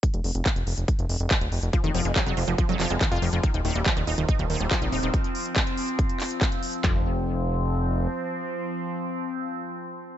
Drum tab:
HH |xxoxxxoxxxoxxxox|xxoxxxoxxxoxxxox|xxoxxxoxxxoxxxox|xxoxxxoxxxoxxxox|
CP |----x-------x---|----x-----x-x---|----x-------x---|----x-----x-x---|
BD |o---o---o---o---|o---o---o---o---|o---o---o---o---|o---o---o---o---|

HH |----------------|----------------|
CP |x---------------|----------------|
BD |o---------------|----------------|